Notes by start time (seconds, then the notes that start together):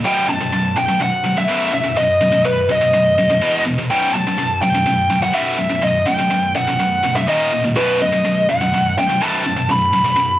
0.04 B1 F#2 B2 G5
0.29 B1 F#2 A5
0.41 B1 F#2
0.53 B1 F#2
0.76 B1 F#2 G5
0.88 B1 F#2
1.00 B1 F#2 F#5
1.24 B1 F#2
1.36 B1 F#2 E5
1.48 B1 F#2 B2
1.72 B1 F#2 E5
1.84 B1 F#2
1.96 B1 F#2 D#5
2.21 B1 F#2
2.32 B1 F#2
2.44 B1 F#2 B4
2.69 B1 F#2 D#5
2.81 B1 F#2
2.93 B1 F#2
3.18 B1 F#2
3.30 B1 F#2
3.41 E2 B2 E3
3.66 E2 B2
3.78 E2 B2
3.90 B1 F#2 B2 G5
4.14 B1 F#2 A5
4.27 B1 F#2
4.38 B1 F#2
4.62 B1 F#2 G5
4.75 B1 F#2
4.86 B1 F#2
5.10 B1 F#2
5.22 B1 F#2 F#5
5.33 B1 F#2 B2 E5
5.58 B1 F#2
5.70 B1 F#2
5.82 B1 F#2 D#5
6.05 B1 F#2 G5
6.18 B1 F#2
6.30 B1 F#2
6.55 B1 F#2 F#5
6.67 B1 F#2
6.79 B1 F#2
7.03 B1 F#2
7.15 B1 F#2 E5
7.27 D#2 A#2 D#3 D#5
7.52 D#2 A#2
7.64 D#2 A#2
7.76 B1 F#2 B2 B4
8.01 B1 F#2 D#5
8.13 B1 F#2
8.25 B1 F#2
8.49 B1 F#2 F#5
8.61 B1 F#2
8.74 B1 F#2
8.98 B1 F#2 G5
9.10 B1 F#2
9.21 B1 F#2 B2 A5
9.45 B1 F#2
9.57 B1 F#2
9.69 B1 F#2 B5
9.93 B1 F#2
10.05 B1 F#2
10.16 B1 F#2